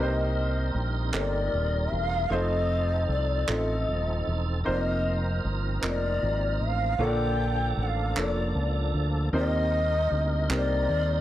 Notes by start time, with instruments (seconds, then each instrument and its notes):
Already playing: fingered electric bass C2, upright piano C3 A#3 C4 D#4 G4, tonewheel organ G3 C4 D#4 A#4
0.00 upright piano C5, shakuhachi D#5
0.74 fingered electric bass A#1
1.12 fingered electric bass G1, upright piano A#3 C4 D#4 G4 A4, shakuhachi D5, clap
1.20 upright piano A#4
1.53 fingered electric bass D#1
1.91 fingered electric bass E1, shakuhachi F5
2.29 fingered electric bass F1, tonewheel organ F3 C4 D#4 G#4, upright piano A3 C4 D#4 F4 C5, shakuhachi D#5
2.36 tonewheel organ A4
3.08 fingered electric bass C2, shakuhachi D5
3.48 fingered electric bass A1, upright piano A3 C4 D#4 F4 A4, clap
3.53 shakuhachi D#5
3.88 fingered electric bass D#1
4.27 fingered electric bass E1
4.64 fingered electric bass F1, tonewheel organ F3 C4 D#4 A#4, upright piano A#3 C4 D#4 F4 C5
4.69 shakuhachi D5
4.81 shakuhachi D#5
5.44 fingered electric bass G1
5.81 fingered electric bass F1, upright piano A#3 C4 D#4 F4 C5, clap
5.87 shakuhachi D5
6.22 fingered electric bass G#1
6.60 fingered electric bass A1
6.66 shakuhachi F5
6.98 fingered electric bass A#1, upright piano D3 A#3 D4 F4 A4 C#5, tonewheel organ F3 A#3 D4 A4
7.03 upright piano D5, shakuhachi G5
7.77 fingered electric bass A1
7.82 shakuhachi F#5
7.86 shakuhachi F5
8.16 fingered electric bass F1, upright piano A#3 D4 F4 A4 C#5, shakuhachi C#5, clap
8.24 upright piano D5
8.30 shakuhachi D5
8.54 fingered electric bass C#2
8.94 fingered electric bass D2
9.32 fingered electric bass D#2, upright piano C3 A#3 C4 D#4 F4 C5, tonewheel organ G3 C4 D#4 A#4
9.37 upright piano G4, shakuhachi D#5
10.11 fingered electric bass D2
10.50 fingered electric bass C2, upright piano A#3 C4 D#4 G4 C5, clap
10.55 shakuhachi D5
10.89 fingered electric bass D#2